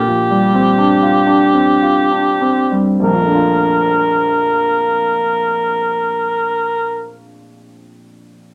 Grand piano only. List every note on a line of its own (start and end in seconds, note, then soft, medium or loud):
0.00 2.98 A#2 soft
0.08 0.45 F3 soft
0.31 0.69 G3 soft
0.54 0.93 C4 soft
0.78 1.19 D4 soft
1.02 1.44 F4 soft
1.27 1.71 D4 soft
1.54 2.00 C4 soft
1.82 2.30 F4 soft
2.11 2.61 D4 soft
2.41 2.90 C4 soft
2.72 3.02 G3 soft
3.00 7.13 A#1 soft
3.07 7.20 F2 soft
3.13 7.26 F3 soft
3.20 7.33 A3 soft
3.27 7.40 D4 soft
3.34 7.48 F4 soft